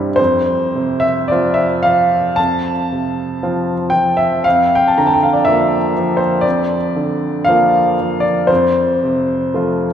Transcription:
0.00 0.15 C2 medium
0.00 0.19 G2 medium
0.00 0.21 G3 soft
0.00 0.21 C4 medium
0.00 0.21 E4 medium
0.00 0.21 G4 medium
0.00 0.16 C5 soft
0.00 0.21 E5 medium
0.16 2.34 F2 medium
0.16 1.02 C5 medium
0.75 1.64 C3 medium
1.00 1.29 E5 medium
1.28 1.81 F3 soft
1.28 1.81 C4 soft
1.28 1.81 F4 medium
1.28 1.57 D5 medium
1.54 1.83 E5 medium
1.83 2.70 F3 soft
1.83 2.37 F5 medium
2.36 4.41 F2 medium
2.36 3.92 A5 medium
2.92 3.73 C3 soft
3.43 3.90 F3 medium
3.43 3.90 C4 soft
3.43 3.90 F4 medium
3.90 4.45 F3 soft
3.90 4.17 G5 medium
4.17 4.44 E5 medium
4.44 6.42 F2 medium
4.44 4.76 F5 medium
4.75 4.90 G5 medium
4.88 5.00 A5 medium
4.98 5.77 D3 soft
4.98 5.08 A#5 medium
5.07 5.16 A5 medium
5.14 5.24 G5 medium
5.23 5.35 F5 medium
5.33 5.46 D5 medium
5.45 5.92 F3 soft
5.45 5.93 A#3 soft
5.45 5.93 F4 soft
5.45 6.19 E5 medium
5.98 6.76 F3 medium
6.17 6.43 C5 medium
6.41 8.45 F2 medium
6.41 7.44 D5 medium
6.96 7.77 D3 soft
7.45 7.94 F3 medium
7.45 7.94 A#3 medium
7.45 7.94 F4 medium
7.45 8.23 F5 medium
8.00 8.51 F3 soft
8.20 8.48 D5 medium
8.47 9.93 F2 medium
8.47 9.93 C5 medium
9.04 9.84 C3 medium
9.54 9.93 F3 soft
9.54 9.93 A3 soft
9.54 9.93 F4 medium

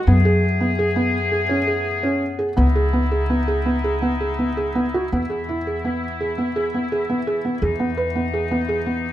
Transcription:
0.07 2.53 F#2 medium
0.07 2.40 E3 medium
0.07 2.40 A3 medium
0.07 5.07 B3 medium
0.07 0.17 B3 medium
0.07 2.40 G#4 medium
0.25 0.43 G#4 medium
0.60 0.70 B3 medium
0.79 0.88 G#4 medium
0.96 1.14 B3 medium
1.32 1.41 G#4 medium
1.49 1.59 C#4 medium
1.67 1.86 G#4 medium
2.03 2.22 C#4 medium
2.39 2.48 G#4 medium
2.57 5.08 C#2 medium
2.57 2.66 B3 medium
2.57 5.09 D#4 medium
2.57 5.09 E4 medium
2.75 2.85 G#4 medium
2.93 3.02 B3 medium
3.11 3.21 G#4 medium
3.30 3.39 B3 medium
3.48 3.57 G#4 medium
3.66 3.75 B3 medium
3.84 3.93 G#4 medium
4.02 4.11 B3 medium
4.21 4.30 G#4 medium
4.39 4.48 B3 medium
4.57 4.66 G#4 medium
4.75 4.85 B3 medium
4.94 5.03 F#4 medium
5.12 7.59 E2 medium
5.12 9.12 E3 medium
5.12 9.12 B3 medium
5.12 5.22 B3 medium
5.12 7.60 E4 medium
5.30 5.39 G#4 medium
5.49 5.58 E4 medium
5.67 5.76 G#4 medium
5.85 6.03 B3 medium
6.21 6.29 G#4 medium
6.38 6.47 B3 medium
6.56 6.65 G#4 medium
6.74 6.83 B3 medium
6.92 7.01 G#4 medium
7.10 7.19 B3 medium
7.27 7.36 G#4 medium
7.45 7.54 B3 medium
7.62 9.12 E2 medium
7.62 9.12 D#4 medium
7.62 7.71 G#4 medium
7.80 7.89 B3 medium
7.97 8.07 B4 medium
8.15 8.25 B3 medium
8.34 8.43 G#4 medium
8.51 8.60 B3 medium
8.69 8.78 G#4 medium
8.86 9.04 B3 medium

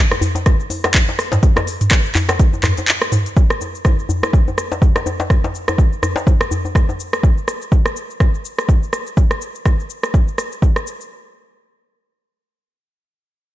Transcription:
0.11 cross-stick medium
0.11 djembe tone medium
0.11 shaker soft
0.21 open hi-hat medium
0.21 djembe bass medium
0.21 shaker medium
0.35 closed hi-hat soft
0.35 djembe tone medium
0.35 shaker soft
0.46 kick loud
0.46 cross-stick medium
0.46 closed hi-hat medium
0.46 shaker medium
0.60 shaker soft
0.70 open hi-hat medium
0.70 djembe tone medium
0.70 shaker medium
0.84 cross-stick medium
0.84 closed hi-hat soft
0.84 djembe slap medium
0.84 shaker soft
0.94 kick loud
0.94 clap loud
0.94 closed hi-hat medium
0.94 djembe tone medium
0.94 shaker medium
1.09 djembe slap medium
1.09 shaker soft
1.19 cross-stick medium
1.19 open hi-hat medium
1.19 shaker medium
1.32 closed hi-hat soft
1.32 mid tom medium
1.32 djembe slap loud
1.32 djembe tone medium
1.32 shaker soft
1.43 kick loud
1.43 closed hi-hat medium
1.43 shaker medium
1.56 cross-stick medium
1.56 djembe slap medium
1.56 djembe tone medium
1.56 shaker soft
1.67 open hi-hat medium
1.67 shaker medium
1.81 closed hi-hat soft
1.81 mid tom medium
1.81 shaker soft
1.90 kick loud
1.90 cross-stick medium
1.90 clap loud
1.90 closed hi-hat medium
1.90 djembe tone medium
1.90 shaker medium
2.05 shaker soft
2.15 clap medium
2.15 open hi-hat medium
2.15 djembe tone medium
2.15 djembe bass loud
2.15 shaker medium
2.29 cross-stick loud
2.29 closed hi-hat soft
2.29 djembe slap loud
2.29 shaker soft
2.40 kick loud
2.40 closed hi-hat medium
2.40 shaker medium
2.53 djembe tone medium
2.53 shaker soft
2.63 cross-stick medium
2.63 clap medium
2.63 mid tom medium
2.63 open hi-hat loud
2.63 djembe bass loud
2.63 shaker medium
2.77 closed hi-hat soft
2.77 djembe tone medium
2.77 shaker soft
2.88 clap loud
2.88 closed hi-hat medium
2.88 shaker medium
3.02 cross-stick medium
3.02 shaker soft
3.12 mid tom medium
3.12 open hi-hat medium
3.12 djembe tone medium
3.12 shaker medium
3.26 closed hi-hat soft
3.26 shaker soft
3.37 kick loud
3.37 shaker soft
3.50 cross-stick medium
3.50 shaker soft
3.61 djembe tone medium
3.61 shaker medium
3.75 shaker soft
3.85 kick loud
3.85 cross-stick medium
3.85 djembe tone medium
3.85 shaker medium
3.99 shaker soft
4.09 djembe bass medium
4.09 shaker medium
4.23 cross-stick medium
4.23 djembe tone medium
4.23 shaker soft
4.33 kick loud
4.33 shaker soft
4.48 djembe tone medium
4.48 shaker soft
4.58 cross-stick medium
4.58 shaker medium
4.72 djembe slap medium
4.72 shaker soft
4.82 kick loud
4.82 djembe tone medium
4.82 shaker soft
4.96 cross-stick medium
4.96 djembe slap medium
4.96 shaker soft
5.06 djembe tone medium
5.06 shaker medium
5.20 djembe slap loud
5.20 shaker soft
5.30 kick loud
5.30 cross-stick medium
5.30 shaker soft
5.44 djembe slap medium
5.44 djembe tone medium
5.44 shaker soft
5.55 shaker medium
5.68 cross-stick medium
5.68 djembe tone medium
5.68 shaker soft
5.78 kick loud
5.78 shaker medium
5.93 shaker soft
6.03 cross-stick medium
6.03 djembe tone medium
6.03 djembe bass medium
6.03 shaker medium
6.16 djembe slap loud
6.16 shaker soft
6.27 kick loud
6.27 djembe tone medium
6.27 shaker soft
6.41 cross-stick loud
6.41 shaker soft
6.51 djembe bass medium
6.51 shaker medium
6.65 djembe tone medium
6.65 shaker soft
6.75 kick loud
6.75 cross-stick medium
6.75 shaker medium
6.89 djembe tone medium
6.89 shaker soft
7.00 shaker medium
7.13 cross-stick medium
7.13 shaker soft
7.23 kick loud
7.23 shaker medium
7.38 shaker soft
7.48 cross-stick medium
7.48 shaker medium
7.62 shaker soft
7.72 kick loud
7.72 shaker medium
7.86 cross-stick medium
7.86 shaker soft
7.96 shaker medium
8.10 shaker soft
8.20 kick loud
8.20 cross-stick medium
8.20 shaker medium
8.35 shaker soft
8.45 shaker medium
8.59 cross-stick medium
8.59 shaker soft
8.69 kick loud
8.69 shaker medium
8.83 shaker soft
8.93 cross-stick medium
8.93 shaker medium
9.07 shaker soft
9.17 kick loud
9.17 shaker soft
9.31 cross-stick medium
9.31 shaker soft
9.41 shaker medium
9.55 shaker soft
9.66 kick loud
9.66 cross-stick medium
9.66 shaker medium
9.80 shaker soft
9.90 shaker medium
10.03 cross-stick medium
10.03 shaker soft
10.14 kick loud
10.14 shaker soft
10.28 shaker soft
10.38 cross-stick medium
10.38 shaker medium
10.52 shaker soft
10.62 kick loud
10.62 shaker soft
10.76 cross-stick medium
10.76 shaker soft
10.87 shaker medium
11.01 shaker soft

